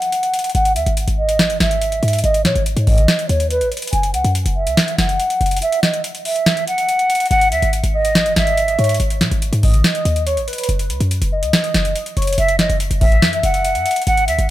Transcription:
Already playing: F#5
0.02 closed hi-hat
0.12 closed hi-hat
0.23 closed hi-hat
0.34 closed hi-hat
0.39 closed hi-hat
0.44 closed hi-hat
0.49 closed hi-hat
0.54 G#1 F#5, closed hi-hat
0.65 closed hi-hat
0.76 D#2 E5, closed hi-hat
0.86 G#1, closed hi-hat
0.97 closed hi-hat
1.08 G#1, closed hi-hat
1.18 D#5
1.29 closed hi-hat
1.39 snare, closed hi-hat
1.50 closed hi-hat
1.60 G#1 E5, snare, closed hi-hat
1.71 closed hi-hat
1.82 closed hi-hat
1.92 closed hi-hat
2.03 G#2, closed hi-hat
2.08 closed hi-hat
2.13 closed hi-hat
2.19 closed hi-hat
2.23 G#1 D#5, closed hi-hat
2.34 closed hi-hat
2.45 B2 C#5, snare, closed hi-hat
2.55 G#1, closed hi-hat
2.66 closed hi-hat
2.77 G#2, closed hi-hat
2.87 D#5, kick, open hi-hat
2.98 D#3, closed hi-hat
3.08 snare, closed hi-hat
3.19 closed hi-hat
3.29 D#2 C#5, closed hi-hat
3.40 closed hi-hat
3.50 B4, closed hi-hat
3.61 A1, closed hi-hat
3.72 closed hi-hat
3.77 closed hi-hat
3.82 closed hi-hat
3.87 closed hi-hat
3.93 F#1 G#5, closed hi-hat
4.03 closed hi-hat
4.14 C#2 F#5, closed hi-hat
4.24 F#2, closed hi-hat
4.35 closed hi-hat
4.46 F#1, closed hi-hat
4.56 E5
4.67 C#2, closed hi-hat
4.77 snare, closed hi-hat
4.88 closed hi-hat
4.98 F#1 F#5, snare, closed hi-hat
5.09 closed hi-hat
5.20 closed hi-hat
5.30 closed hi-hat
5.41 F#1, closed hi-hat
5.46 closed hi-hat
5.51 closed hi-hat
5.57 closed hi-hat
5.62 E5, closed hi-hat
5.72 closed hi-hat
5.83 D#5, snare, closed hi-hat
5.94 closed hi-hat
6.04 closed hi-hat
6.15 closed hi-hat
6.25 E5, open hi-hat
6.36 closed hi-hat
6.46 snare, closed hi-hat
6.57 closed hi-hat
6.67 F#5, closed hi-hat
6.78 closed hi-hat
6.89 closed hi-hat
6.99 closed hi-hat
7.10 closed hi-hat
7.15 closed hi-hat
7.20 closed hi-hat
7.26 closed hi-hat
7.30 G#1 F#5, closed hi-hat
7.41 closed hi-hat
7.52 D#2 E5, closed hi-hat
7.62 G#1, closed hi-hat
7.73 closed hi-hat
7.84 G#1, closed hi-hat
7.94 D#5
8.05 closed hi-hat
8.15 snare, closed hi-hat
8.26 closed hi-hat
8.36 G#1 E5, snare, closed hi-hat
8.47 closed hi-hat
8.57 closed hi-hat
8.68 closed hi-hat
8.79 G#2 C#5, closed hi-hat
8.84 closed hi-hat
8.89 closed hi-hat
8.94 closed hi-hat
9.00 G#1, closed hi-hat
9.10 closed hi-hat
9.21 B2, snare, closed hi-hat
9.31 G#1, closed hi-hat
9.42 closed hi-hat
9.53 G#2, closed hi-hat
9.63 D#5, kick, open hi-hat
9.74 D#3, closed hi-hat
9.84 snare, closed hi-hat
9.95 closed hi-hat
10.05 D#2, closed hi-hat
10.16 closed hi-hat
10.27 C#5, closed hi-hat
10.37 A1, closed hi-hat
10.48 B4, closed hi-hat
10.53 closed hi-hat
10.58 closed hi-hat
10.64 closed hi-hat
10.69 F#1, closed hi-hat
10.79 closed hi-hat
10.90 C#2, closed hi-hat
11.01 F#2, closed hi-hat
11.11 closed hi-hat
11.22 F#1, closed hi-hat
11.32 D#5
11.43 C#2, closed hi-hat
11.53 snare, closed hi-hat
11.64 closed hi-hat
11.74 F#1, snare, closed hi-hat
11.85 closed hi-hat
11.96 closed hi-hat
12.06 closed hi-hat
12.17 F#1 C#5, closed hi-hat
12.22 closed hi-hat
12.27 closed hi-hat
12.33 closed hi-hat
12.38 F#1 E5, closed hi-hat
12.48 closed hi-hat
12.59 D#5, snare, closed hi-hat
12.69 F#1, closed hi-hat
12.80 closed hi-hat
12.91 F#1, closed hi-hat
13.01 E5, kick, open hi-hat
13.12 closed hi-hat
13.22 F#2, snare, closed hi-hat
13.33 closed hi-hat
13.43 F#1 F#5, closed hi-hat
13.54 closed hi-hat
13.65 closed hi-hat
13.75 F#2, closed hi-hat
13.86 closed hi-hat
13.91 closed hi-hat
13.96 closed hi-hat
14.02 closed hi-hat
14.06 G#1 F#5, closed hi-hat
14.17 closed hi-hat
14.28 D#2 E5, closed hi-hat
14.38 G#1, closed hi-hat

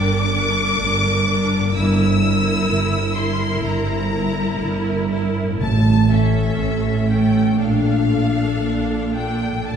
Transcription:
Already playing: G1 G2 G3 D4 A#4 D6
0.34 D4 A#4
0.80 G1 G2
1.28 D4 A#4
1.57 G2
1.62 A#3
1.66 E4
1.70 A#4 E6
1.75 G1 G2 E4 A#4 E6
2.22 E4 A#4
2.69 G1 G2
3.16 E4 A#4 C6
3.64 G1 G2 A#5
4.13 E4 A#4
4.62 G1 G2
5.11 E4 A#4
5.43 A2
5.48 A3
5.53 E4
5.57 A2 C#5 A5
5.61 A1 A2 A5
6.10 C#4 A4 E5
6.59 A1 A2
7.09 C#4 A4 G5
7.42 A#2
7.47 A3
7.52 D4
7.56 A#1 A#2 D4 A4 D5 F5
7.60 F5
8.09 D4 A4
8.60 A#1 A#2
9.12 D4 A4 G5
9.48 A2
9.52 A3
9.57 F4
9.62 D5
9.66 A1 A2 A5

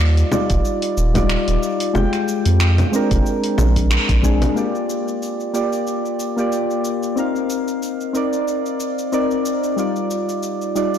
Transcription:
Already playing: D#2 G3 D#4 F4 D5
0.00 cabasa
0.17 open hi-hat, cabasa
0.31 G3 D#4 F4 D5, low conga, cabasa
0.50 D#1, kick, open hi-hat, cabasa
0.65 cabasa
0.82 open hi-hat, cabasa
0.97 D#1, cabasa
1.14 G3 D#4 F4 D5, kick, open hi-hat, low conga, cabasa
1.29 finger snap, cabasa
1.48 D#1, open hi-hat, cabasa
1.63 cabasa
1.80 open hi-hat, cabasa
1.94 F1 G#3 F4 G4 G5, low conga, cabasa
2.13 finger snap, open hi-hat, cabasa
2.28 cabasa
2.46 F2, open hi-hat, cabasa
2.60 finger snap, cabasa
2.78 open hi-hat, low conga, cabasa
2.92 G#3 C4 D4 A#4, cabasa
3.11 F1, kick, open hi-hat, cabasa
3.26 cabasa
3.44 open hi-hat, cabasa
3.58 A#1, low conga, cabasa
3.76 kick, open hi-hat, cabasa
3.91 finger snap, cabasa
4.09 A#1, kick, open hi-hat, cabasa
4.23 G#3 C4 D4 G#4, kick, cabasa
4.42 open hi-hat, low conga, cabasa
4.55 A#3 F4 G4 D5, cabasa
4.75 cabasa
4.90 cabasa
5.08 cabasa
5.22 cabasa
5.40 cabasa
5.54 A#3 F4 G4 D5, cabasa
5.73 cabasa
5.87 cabasa
6.06 cabasa
6.20 cabasa
6.36 A#3 F4 G4 D5, cabasa
6.52 cabasa
6.70 cabasa
6.85 cabasa
7.03 cabasa
7.16 C4 D#4 A#4 F5, cabasa
7.36 cabasa
7.50 cabasa
7.68 cabasa
7.83 cabasa
8.01 cabasa
8.13 C4 D#4 A#4 D5, cabasa
8.33 cabasa
8.48 cabasa
8.66 cabasa
8.80 cabasa
8.99 cabasa
9.12 C4 D#4 A#4 D5, cabasa
9.31 cabasa
9.46 cabasa
9.64 cabasa
9.76 G3 D#4 F4 D5, cabasa
9.96 cabasa
10.11 cabasa
10.29 cabasa
10.43 cabasa
10.62 cabasa
10.75 G3 D#4 F4 D5, cabasa
10.94 cabasa

